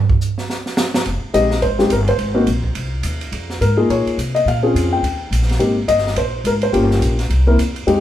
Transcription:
0.09 kick medium
0.21 hi-hat pedal medium
0.38 snare soft
0.50 snare soft
0.66 snare soft
0.77 snare loud
0.77 hi-hat pedal medium
0.94 snare loud
1.06 1.21 F1 medium
1.06 ride soft
1.34 1.61 A#1 medium
1.34 1.49 G#3 medium
1.34 1.49 C4 soft
1.34 1.49 D#4 soft
1.34 1.49 G4 medium
1.34 1.63 D#5 medium
1.34 hi-hat pedal soft
1.34 ride medium
1.51 snare soft
1.62 1.89 G#1 medium
1.62 1.91 C5 medium
1.62 ride soft
1.79 1.89 G#3 medium
1.79 1.89 C4 medium
1.79 1.89 D#4 medium
1.79 1.89 G4 medium
1.79 snare soft
1.90 2.17 G1 medium
1.90 1.97 A#4 medium
1.90 hi-hat pedal soft
1.90 ride medium
2.08 2.89 C5 medium
2.08 ride soft
2.18 2.46 G#1 medium
2.18 ride medium
2.34 2.46 A#3 medium
2.34 2.46 C4 medium
2.34 2.46 D#4 medium
2.34 2.46 F#4 medium
2.47 2.75 A#1 medium
2.47 hi-hat pedal soft
2.47 ride medium
2.64 kick soft
2.75 3.03 C2 medium
2.75 ride medium
3.03 3.31 D#2 medium
3.03 hi-hat pedal medium
3.03 ride medium
3.21 ride soft
3.32 3.60 F2 medium
3.32 ride medium
3.50 snare soft
3.61 3.88 G#2 medium
3.61 3.87 A#4 medium
3.61 hi-hat pedal soft
3.61 ride medium
3.77 4.15 A#3 medium
3.77 4.15 D#4 medium
3.77 4.15 F4 medium
3.77 4.15 G#4 medium
3.89 4.05 A#2 medium
3.89 4.16 C#5 medium
3.89 ride medium
4.06 muted upright bass stroke soft
4.06 ride soft
4.18 4.45 C3 medium
4.18 hi-hat pedal medium
4.18 ride medium
4.35 4.46 D#5 medium
4.35 ride soft
4.46 4.73 A#2 medium
4.46 4.93 F5 medium
4.46 ride medium
4.63 5.00 C4 medium
4.63 5.01 C#4 medium
4.63 5.01 F4 medium
4.63 5.01 G#4 medium
4.75 5.02 F2 medium
4.75 hi-hat pedal soft
4.75 ride medium
4.93 5.45 G5 medium
5.03 5.30 D#2 medium
5.03 ride medium
5.31 5.59 A#1 medium
5.31 hi-hat pedal medium
5.31 ride medium
5.42 snare soft
5.49 snare soft
5.49 ride soft
5.59 5.87 G#1 medium
5.59 5.74 A#3 medium
5.59 5.75 C4 soft
5.59 5.75 D#4 medium
5.59 5.74 G4 medium
5.59 ride medium
5.88 6.15 G1 medium
5.88 6.14 D#5 medium
5.88 hi-hat pedal soft
5.88 ride medium
5.98 snare soft
6.07 snare soft
6.16 6.44 A#1 medium
6.16 6.46 C5 medium
6.16 ride medium
6.44 6.72 G#1 medium
6.44 6.52 A#4 medium
6.44 hi-hat pedal soft
6.44 ride medium
6.62 7.43 C5 medium
6.62 ride soft
6.72 7.00 G1 medium
6.72 7.15 A#3 medium
6.72 7.15 C#4 medium
6.72 7.15 F4 medium
6.72 7.15 G4 medium
6.72 ride soft
6.91 snare soft
7.01 7.29 A#1 medium
7.01 hi-hat pedal soft
7.01 ride medium
7.19 snare soft
7.19 ride soft
7.30 7.57 C2 medium
7.30 ride medium
7.47 7.57 A#3 medium
7.47 7.57 C4 medium
7.47 7.57 E4 medium
7.47 7.58 A#4 medium
7.58 7.86 E2 medium
7.58 hi-hat pedal medium
7.58 ride medium
7.76 ride soft
7.87 8.00 F2 medium
7.87 8.00 G#3 medium
7.87 8.00 C4 medium
7.87 8.00 D#4 medium
7.87 8.00 G4 medium
7.87 ride medium

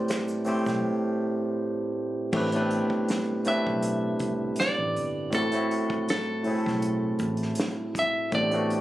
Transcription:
0.00 0.26 A2 medium
0.00 0.27 A3 medium
0.00 0.27 C4 medium
0.00 0.28 G4 medium
0.00 1.92 C5 medium
0.00 0.28 D5 medium
0.08 finger snap medium
0.08 snare loud
0.08 closed hi-hat medium
0.08 shaker medium
0.28 shaker medium
0.44 1.64 A2 medium
0.44 1.64 A3 medium
0.44 1.65 C4 medium
0.44 1.65 G4 medium
0.44 muted fingered electric bass stroke soft
0.44 open hi-hat soft
0.44 shaker medium
0.49 1.66 C5 loud
0.66 0.81 B1 medium
0.66 kick medium
0.66 snare soft
0.66 shaker medium
2.32 2.81 A1 loud
2.32 2.48 A2 medium
2.32 2.49 A3 medium
2.32 2.49 C4 medium
2.32 2.50 D4 medium
2.32 2.50 G4 medium
2.32 kick loud
2.32 crash loud
2.37 2.50 B4 loud
2.52 3.27 A2 medium
2.52 3.27 A3 medium
2.52 2.60 B3 medium
2.52 3.28 D4 medium
2.52 3.28 G4 medium
2.52 closed hi-hat medium
2.57 3.29 B4 medium
2.61 3.31 C4 medium
2.71 closed hi-hat medium
2.90 kick medium
3.08 snare loud
3.08 closed hi-hat medium
3.45 4.64 A2 medium
3.45 4.64 A3 medium
3.45 4.65 C4 medium
3.45 4.65 D4 medium
3.45 4.66 G4 medium
3.45 4.55 E5 loud
3.45 muted fingered electric bass stroke soft
3.45 closed hi-hat medium
3.49 4.66 B4 medium
3.67 4.12 B1 medium
3.67 kick medium
3.82 closed hi-hat medium
4.19 4.52 C2 medium
4.19 kick medium
4.19 closed hi-hat medium
4.56 5.36 D5 loud
4.56 closed hi-hat medium
4.60 snare loud
4.78 4.92 A1 medium
4.96 5.34 G1 medium
4.96 closed hi-hat medium
5.31 5.81 A1 loud
5.31 5.47 A2 medium
5.31 5.48 A3 medium
5.31 5.48 C4 medium
5.31 5.49 E4 medium
5.31 kick loud
5.31 closed hi-hat medium
5.35 5.49 F#4 medium
5.35 6.09 A4 medium
5.51 6.26 A2 medium
5.51 6.26 A3 medium
5.51 6.27 C4 medium
5.51 6.27 E4 medium
5.51 closed hi-hat medium
5.55 6.28 F#4 medium
5.71 closed hi-hat medium
5.90 kick medium
6.09 7.55 A4 medium
6.09 snare loud
6.09 closed hi-hat medium
6.44 7.64 A2 medium
6.44 7.64 A3 medium
6.44 7.64 C4 medium
6.44 7.65 E4 medium
6.44 6.53 G#4 medium
6.44 muted fingered electric bass stroke soft
6.44 open hi-hat medium
6.55 7.69 A4 medium
6.66 7.12 B1 medium
6.66 kick medium
6.66 snare soft
6.82 closed hi-hat medium
7.19 7.51 A1 medium
7.19 kick medium
7.19 closed hi-hat medium
7.37 closed hi-hat soft
7.42 snare soft
7.55 closed hi-hat medium
7.60 snare loud
7.95 8.32 E5 loud
7.95 kick loud
7.95 closed hi-hat medium
8.32 8.80 A1 loud
8.32 8.48 A2 medium
8.32 8.48 A3 medium
8.32 8.49 B3 medium
8.32 8.49 C4 medium
8.32 8.49 D4 medium
8.32 8.81 D5 loud
8.32 kick loud
8.32 closed hi-hat medium
8.36 8.50 G4 medium
8.51 8.81 A2 medium
8.51 8.81 A3 medium
8.51 8.81 B3 medium
8.51 8.81 C4 medium
8.51 8.81 D4 medium
8.51 closed hi-hat medium
8.55 8.81 F#4 medium
8.70 closed hi-hat medium

